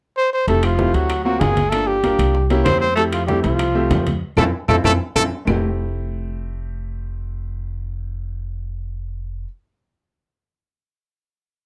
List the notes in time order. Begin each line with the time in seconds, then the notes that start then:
0.17 C5
0.33 C5
0.47 F1 A3 C4 E4 G4 A4, high bongo, high conga, high timbale
0.63 F3 F4, high bongo, high conga, high timbale, claves
0.78 A3 C4 E4 G4, high bongo, high conga, low timbale
0.94 D2 F#3 F#4, high bongo, high conga, high timbale
1.10 high bongo, high conga, high timbale, claves
1.24 F#3 A#3 C4 F4 F#4, high bongo, high conga
1.39 G1 G#3 G#4, high bongo, low bongo, high conga, high timbale, low timbale
1.56 high conga, high timbale
1.69 A3 A#3 D4 F4 A4, high bongo, high conga, high timbale, claves
1.87 G3 G4, high bongo, high conga
2.03 A#3 D4 F4 A#4, high bongo, high conga, high timbale, low timbale
2.19 C2, high conga, high timbale, claves
2.35 high bongo, high conga
2.50 A#3 C#4 E4 G4, high conga, high timbale
2.65 F2 C4 C5, high bongo, low bongo, high conga, high timbale, low timbale, claves
2.80 C4 C5, high bongo
2.96 A3 C4 E4 G4 A4, high bongo, high conga, high timbale
3.11 F3 F4, high bongo, high conga, high timbale, claves
3.27 G3 A3 C4 E4 G4, high bongo, high conga, low timbale
3.42 C2 F3 F4, high bongo, high conga, high timbale
3.59 high bongo, high conga, high timbale, claves
3.75 A3 C4 G4 E5, high bongo, high conga
3.90 F2, high bongo, low bongo, high conga, high timbale, low timbale
4.07 high conga, high timbale
4.37 F2 A3 C4 E4 F4 A4, high bongo, low conga, high timbale, claves
4.68 F2 A3 C4 E4 F4 A4, high bongo, low conga, high timbale, claves
4.84 F2 A3 C4 E4 F4 A4, high bongo, low conga, high timbale, claves
5.15 F2 A3 C4 E4 F4 A4, high bongo, low conga, high timbale, claves
5.45 F1 A3 C4 E4, low bongo, low conga, low timbale, claves
5.49 G4